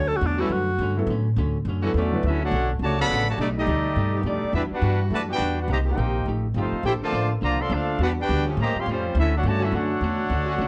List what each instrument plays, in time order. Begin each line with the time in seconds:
Already playing: upright bass D2, hollow-body jazz guitar D3 F#3 A3 C#4, trombone section D3 A3 C#4 F#4
0.08 alto saxophone A4
0.17 alto saxophone F#4
0.21 upright bass E2, hollow-body jazz guitar D3 F#3 A3 C#4
0.26 alto saxophone D4
0.38 trombone section D3 A3 C#4 F#4, grand piano G3 C#4 F#4 B4, alto saxophone E4
0.49 upright bass F#2, hollow-body jazz guitar D3 F#3 A3 C#4, alto saxophone F#4
0.79 upright bass G2, hollow-body jazz guitar D3 F#3 A3
0.83 hollow-body jazz guitar C#4
0.97 grand piano F#3 B3 E4 A4
1.07 upright bass A2, hollow-body jazz guitar D3 F#3 A3
1.12 hollow-body jazz guitar C#4
1.36 upright bass D2, hollow-body jazz guitar D3 F#3 A3 C#4
1.65 upright bass F#2, hollow-body jazz guitar D3 F#3
1.69 hollow-body jazz guitar A3 C#4
1.82 trombone section D3 A3 C#4 F#4, grand piano F#3 B3 E4 A4
1.94 upright bass E2, hollow-body jazz guitar D3 F#3, trombone section F#3 A3 D4, trumpet section A3 C#4 F#4 D5
1.98 hollow-body jazz guitar A3 C#4
2.12 grand piano D2 F#3 B3 E4 B4
2.23 upright bass D2, hollow-body jazz guitar D3 F#3, trumpet section C#4 F#4 E5, trombone section E4
2.27 hollow-body jazz guitar A3 C#4, trumpet section A4
2.43 trombone section A3 C#4 F#4, trumpet section D4 A4 C#5 F#5
2.51 upright bass B1, hollow-body jazz guitar D3 F#3
2.56 hollow-body jazz guitar A3 C#4
2.79 upright bass C#2, trombone section C#3 F#3 A3, hollow-body jazz guitar D3
2.83 hollow-body jazz guitar F#3 A3 C#4, trumpet section F#4 C#5 D5 A5
2.98 trombone section C#3 D3 F#3 A3 B3 C#4 F#4, trumpet section A4 D5 F#5 B5
3.09 upright bass A1, hollow-body jazz guitar D3 F#3 A3
3.13 hollow-body jazz guitar C#4
3.27 trombone section C#3 F#3 A3, trumpet section F#4 C#5 D5 A5
3.38 upright bass B1, hollow-body jazz guitar B2 G3, trombone section G3 A3 D4, trumpet section A3 D#4 G4 D5
3.42 hollow-body jazz guitar A3 D#4
3.57 trombone section G3 A3 D#4, trumpet section A3 G4 D5 D#5
3.67 upright bass D2, hollow-body jazz guitar B2 G3 A3 D#4
3.96 upright bass G2, hollow-body jazz guitar B2 G3 A3 D#4
4.14 trombone section D#3 A3 B3 G4
4.23 upright bass F2, hollow-body jazz guitar B2 G3 A3 D#4, trombone section G3 A3 D4, trumpet section D#4 D5
4.27 trumpet section A3 G4
4.44 muted upright bass stroke
4.53 upright bass E2, hollow-body jazz guitar E3 G3 D4 F#4, trombone section G3 B3 E4, trumpet section D4 G4 B4 E5
4.71 trombone section B3 D4 F#4, trumpet section D4 B4, muted upright bass stroke
4.75 trumpet section G4 F#5
4.81 upright bass G2, trombone section E3 G3 D4 F#4, hollow-body jazz guitar E3 G3 D4 F#4
5.10 upright bass F#2, hollow-body jazz guitar E3 G3 D4 F#4, trombone section A3, trumpet section F#4 B4 D5 A5
5.27 trombone section E3 G3 B3 D4 F#4 G4
5.33 trumpet section D4 F#4 B4 G5
5.38 upright bass E2, hollow-body jazz guitar E3 G3 D4 F#4
5.60 trombone section B3 D4 F#4, trumpet section D4 G4 B4 F#5
5.68 upright bass C2, hollow-body jazz guitar C3 A#3 D#4 G4, trombone section D#3 G3 A#3, trumpet section A#5
5.72 trumpet section G4 C5 D#5
5.85 trombone section D#3 A#3 C4 D#4 G4
5.91 trumpet section D#4 A#4 C5 G5
5.98 upright bass A#1, hollow-body jazz guitar C3 A#3 D#4 G4
6.25 upright bass A1, hollow-body jazz guitar F3 A3 D#4 G4
6.54 upright bass G1, hollow-body jazz guitar F3 A3 D#4, trombone section A3 C4 F4
6.58 trumpet section D#4 A4 C5 F5, hollow-body jazz guitar G4
6.72 muted upright bass stroke
6.83 upright bass A#1, hollow-body jazz guitar A#3 D4 A4 C5, trumpet section E4 A4 C5 G5, trombone section G4
7.01 trombone section D3 F3 A3 A#3 C4 A4, trumpet section F4 C5 D5 A5, muted upright bass stroke
7.13 upright bass A1, hollow-body jazz guitar A#3 D4 A4 C5
7.41 upright bass C2, trombone section D3 F3 A#3, hollow-body jazz guitar A#3 D4 A4 C5, trumpet section F4 C5 D5 A#5
7.60 trombone section F3 A3 C4, trumpet section A4 D5 F5 C6
7.70 upright bass D2, trombone section A3 D4 F4, hollow-body jazz guitar A#3 D4 A4 C5, trumpet section D4 A4 C5
7.74 trumpet section F5
7.99 upright bass E2, hollow-body jazz guitar E3 G3 D4, trombone section B3 D4 F#4
8.03 trumpet section D4 G4 B4 F#5, hollow-body jazz guitar F#4
8.19 trombone section B3 D4 G4, trumpet section D4 F#4 B4 G5
8.29 upright bass D2, hollow-body jazz guitar E3 G3 D4 F#4
8.45 trombone section F3 A3 C#4 G4
8.57 upright bass A2, hollow-body jazz guitar A2 G3 C#4 F4, trombone section A#3, trumpet section G4 C5 D#5
8.62 trumpet section A#5
8.75 trombone section F3 G3 C4, trumpet section F5 C6, muted upright bass stroke
8.80 trumpet section G4 C#5
8.86 upright bass F2, hollow-body jazz guitar A2 G3 C#4 F4, trumpet section G3 C#4
8.90 trombone section F3 G3 C4, trumpet section F4 C5
9.15 upright bass D2, hollow-body jazz guitar D3 A3 C#4, trombone section E4
9.19 trumpet section C#4 F#4 A4 E5, hollow-body jazz guitar F#4
9.37 trombone section A3 C#4 F#4, trumpet section D4 A4 C#5 F#5
9.43 upright bass G2, trombone section C#3 F#3 A3, hollow-body jazz guitar D3 A3 C#4
9.48 hollow-body jazz guitar F#4, trumpet section F#4 C#5 D5 A5
9.59 trombone section D3 A3 C#4 F#4
9.64 trumpet section C#4 F#4 A4 E5, trombone section E4
9.72 upright bass F#2, hollow-body jazz guitar D3 A3 C#4, trombone section A3 D4 F#4, trumpet section D4 A4 C#5 F#5
9.77 hollow-body jazz guitar F#4
10.01 upright bass E2, hollow-body jazz guitar D3 A3 C#4 F#4
10.30 upright bass D2, hollow-body jazz guitar D3 A3 C#4 F#4
10.45 trombone section D3 A3 C#4 F#4
10.58 upright bass C#2, hollow-body jazz guitar D3 A3 C#4 F#4